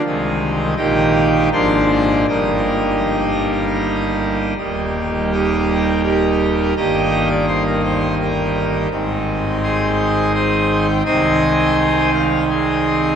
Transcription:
X:1
M:3/4
L:1/16
Q:1/4=83
K:Eb
V:1 name="Pipe organ"
z4 G4 c4 | B8- B2 z2 | z4 [EGB]4 [EGB]4 | [GBe]3 d c B c2 [EGB]4 |
z4 [Ace]4 [Ace]3 g | [cea]6 f2 [Ace]4 |]
V:2 name="Pipe organ" clef=bass
[C,,C,E,A,E]4 [B,,,B,,E,B,E]4 [A,,,A,,F,B,D]4 | [G,,,G,,G,B,E]12 | [E,,,E,,G,B,E]12 | [G,,,G,,E,B,E]12 |
[A,,,A,,E,CE]12 | [C,,C,E,CE]12 |]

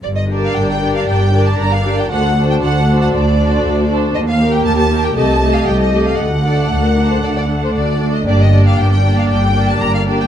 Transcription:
X:1
M:4/4
L:1/16
Q:1/4=116
K:Gm
V:1 name="Violin section"
d e2 f g g2 f g3 a b f2 g | ^f3 g f3 f d6 z2 | e f2 g a a2 g a3 f g e2 f | ^f12- f2 z2 |
d e2 f g g2 f g3 a b f2 g |]
V:2 name="Violin section"
z2 [Bd]4 [Bd]4 [Bd]4 [Bd]2 | [Ac]2 [Ac]4 [Ac]4 [Ac]4 [Ac]2 | z2 [GB]4 [GB]2 [Ae]2 [Ae]4 [Ae]2 | z2 [Ad]2 A B2 c d d2 c d3 e |
[Gd]2 [Gd]4 [Gd]4 [Gd]4 [Gd]2 |]
V:3 name="Viola section"
z2 [DG]4 [DG]4 [DG]4 [DG]2 | [D^F]2 [DF]4 [DF]4 [DF]4 [DF]2 | z2 [B,G]4 [B,G]2 [A,G]2 [A,G]4 [A,G]2 | z2 [A,D]4 [A,D]4 [A,D]4 [A,D]2 |
[B,D]2 [B,D]4 [B,D]4 [B,D]4 [B,D]2 |]
V:4 name="Cello section" clef=bass
G,,4 G,,4 G,,4 G,,4 | D,,4 D,,4 D,,4 D,,4 | E,,4 E,,4 C,,4 C,,4 | D,,4 D,,4 D,,4 D,,4 |
G,,4 G,,4 G,,4 G,,4 |]
V:5 name="Double bass section" clef=bass
G,,,4 G,,,4 G,,,4 G,,,4 | D,,4 D,,4 D,,4 D,,4 | E,,4 E,,4 C,,4 C,,4 | D,,4 D,,4 D,,4 D,,4 |
G,,,4 G,,,4 G,,,4 G,,,4 |]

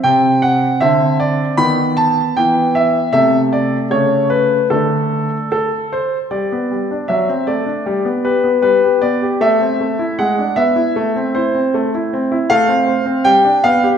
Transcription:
X:1
M:2/4
L:1/16
Q:1/4=77
K:Ador
V:1 name="Grand piano"
g2 f2 e2 d2 | b2 a2 g2 e2 | e2 d2 ^c2 B2 | A4 A2 c2 |
d4 e2 d2- | d2 B2 B2 d2 | e4 f2 e2- | e2 c2 z4 |
[K:Flyd] f4 g2 f2 |]
V:2 name="Grand piano"
[C,C]4 [D,C]4 | [^D,B,]4 [E,B,]4 | [C,A,]4 [^C,A,]4 | [D,A,D]4 z4 |
G, B, G, D F, C A, D | G, B, G B, G, G B, G | A, C A, E ^G, D B, E | A, C E C A, E C E |
[K:Flyd] A, C c C G, D B, G |]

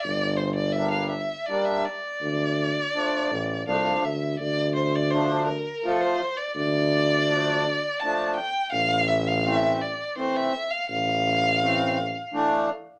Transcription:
X:1
M:3/4
L:1/16
Q:1/4=83
K:Dm
V:1 name="Violin"
d2 c d e f e2 d e d2- | d8 f2 e2 | d2 c d c2 B2 A c2 d | d8 a2 g2 |
f2 e f e2 d2 c e2 f | f8- f2 z2 |]
V:2 name="Accordion"
z4 [G,B,D]2 z2 [G,B,D]2 z2 | z4 [F,A,D]2 z2 [F,A,D]2 z2 | z4 [F,A,D]2 z2 [F,A,F]2 z2 | z4 [F,A,D]2 z2 [F,A,D]2 z2 |
z4 [E,A,C]2 z2 [E,A,C]2 z2 | z4 [E,A,C]2 z2 [E,A,D]2 z2 |]
V:3 name="Tuba" clef=bass
G,,,12 | D,,6 A,,,2 C,,2 D,,2 | D,,12 | D,,12 |
A,,,12 | A,,,12 |]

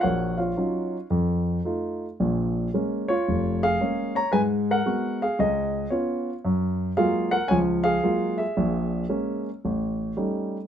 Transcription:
X:1
M:4/4
L:1/16
Q:"Swing" 1/4=113
K:Bbphr
V:1 name="Grand piano"
[GBdg]2 [Fdf]8 z6 | z6 [Fd]4 [Af]4 [db]2 | [ca]2 [Bg]4 [Af]2 [Ae]4 [Fd]3 z | z4 [Af]2 [Bg]2 [da]2 [Af]4 [A_f]2- |
[A_f]6 z8 z2 |]
V:2 name="Grand piano" clef=bass
B,,,4 [G,DEF]2 z2 F,,4 [=A,EF]2 z2 | [B,,,B,,]4 [A,B,D]2 z2 F,,,4 [A,B,D]2 z2 | [A,,A,]4 [A,CG]2 z2 D,,4 [CD]2 z2 | G,,4 [G,A,B,F]2 z2 [D,,F,]4 [G,A,B,F]2 z2 |
[B,,,B,,]4 [A,B,D]2 z2 =A,,,4 [=G,=A,^C^D]2 z2 |]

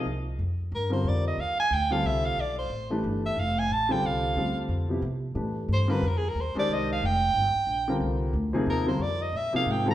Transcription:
X:1
M:3/4
L:1/8
Q:"Swing" 1/4=181
K:Gphr
V:1 name="Soprano saxophone"
z4 B c | d e f a g f | =e f d c2 z | z =e f a =a g |
f4 z2 | z4 c =B | (3B A B c d e f | g6 |
z4 B c | d e =e f g b |]
V:2 name="Upright piano"
z4 z [D,G,CFB]- | [D,G,CFB]2 z3 [D,G,CF=A]- | [D,G,CF=A]2 z3 [=E,=A,DG=B]- | [=E,=A,DG=B]2 z3 [D,G,CF=A]- |
[D,G,CF=A]2 [D,G,CFA]3 [C,F,=B,=EG] | z2 [=E,=A,DG=B]3 [D,G,CF_B] | z3 [E,A,DGc]3 | z4 z [D,G,CFB]- |
[D,G,CFB]2 z [C,F,B,EA]2 [D,G,CFB] | z3 [C,F,B,EA]2 [D,G,CF=A] |]
V:3 name="Upright bass" clef=bass
C,,2 F,,2 G,,2 | F,,2 E,, z D,,2 | C,,2 =B,,,2 =A,,,2 | G,,,2 F,,,2 =A,,,2 |
C,,2 D,,2 F,,2 | C,2 =A,,2 G,,2 | F,,2 E,, z C,,2 | F,,,2 G,,, z B,,,2 |
C,,2 D,,2 E,,2 | F,,2 B,, z A,,2 |]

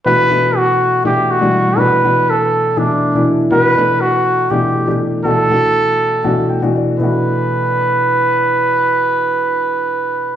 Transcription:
X:1
M:7/8
L:1/16
Q:1/4=121
K:G
V:1 name="Trumpet"
B4 F4 G2 F4 | B4 A4 D4 z2 | B4 F4 G4 z2 | A12 z2 |
B12- B2- | B12- B2 |]
V:2 name="Grand piano"
z12 z2 | z12 z2 | z12 z2 | z8 z2 g2 d2 |
z12 z2 | z12 z2 |]
V:3 name="Grand piano"
[B,,E,A,DF]2 [B,,E,A,DF]6 [B,,E,A,DE]3 [B,,E,G,A,D]3 | [B,,E,A,DF]2 [B,,E,A,DF]6 [B,,E,A,DE]3 [B,,E,A,DE]3 | [B,,E,A,DF]2 [B,,E,A,DA]6 [B,,E,A,DG]3 [B,,E,A,DG]3 | [B,,E,A,DF]2 [B,,E,A,DF]6 [B,,E,A,DF]3 [B,,E,A,DF]3 |
[B,,E,A,DF]12- [B,,E,A,DF]2- | [B,,E,A,DF]12- [B,,E,A,DF]2 |]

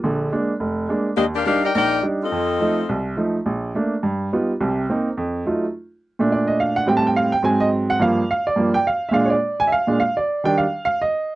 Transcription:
X:1
M:4/4
L:1/8
Q:"Swing" 1/4=211
K:Bb
V:1 name="Saxophone section"
z8 | [B,DGe] [DGBf] [DGBf] [EBdg] [EBdg]2 z [CFAe]- | [CFAe]4- [CFAe] z3 | z8 |
z8 | z8 | z8 | z8 |
z8 | z8 |]
V:2 name="Upright piano"
z8 | z8 | z8 | z8 |
z8 | z4 d e f _g | (3g a g f g _a e z _g | f2 f d2 g f2 |
[=ef] [_d=d]2 _a [ef]2 f d- | d g f2 f e3 |]
V:3 name="Upright piano" clef=bass
[B,,,D,]2 [_A,B,D] z F,,,2 [A,B,D] z | E,,2 [G,DE] z B,,,2 [G,DE] z | F,,2 [F,A,E] z C,,2 [F,A,E] z | B,,,2 [A,B,D] z G,,2 [G,=B,^DF] z |
[C,,C,]2 [B,CE] z F,,2 [_G,A,EF] z | z3 [B,,A,D]4- [B,,A,D] | [A,,G,C]3 z [_A,,_G,C]4 | [G,,F,B,] z3 [G,,F,B,] z3 |
[B,,_A,D] z4 [B,,A,D] z2 | z [E,G,D] z6 |]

